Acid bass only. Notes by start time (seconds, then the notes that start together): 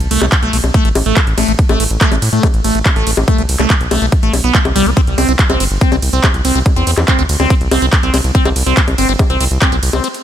0.11 A3
0.21 A3
0.43 A3
0.53 A3
0.74 A3
0.85 A3
1.06 A3
1.38 A3
1.48 A3
1.69 A3
1.80 A3
2.01 A3
2.12 A3
2.33 A3
2.43 A3
2.64 A3
2.75 A3
2.96 A3
3.07 A3
3.28 A3
3.38 A3
3.60 A3
3.70 A3
3.91 A3
4.02 A3
4.23 A3
4.44 B3
4.55 A3
4.76 G3
4.86 C4
4.97 C4
5.18 C4
5.28 C4
5.50 C4
5.60 C4
5.81 C4
5.92 C4
6.13 C4
6.45 C4
6.55 C4
6.76 C4
6.87 C4
7.08 C4
7.19 C4
7.40 C4
7.50 C4
7.71 C4
7.82 C4
8.03 C4
8.14 C4
8.35 C4
8.45 C4
8.66 C4
8.77 C4
8.98 C4
9.09 C4
9.30 C4
9.40 C4
9.62 C4
9.72 C4
9.93 C4
10.04 C4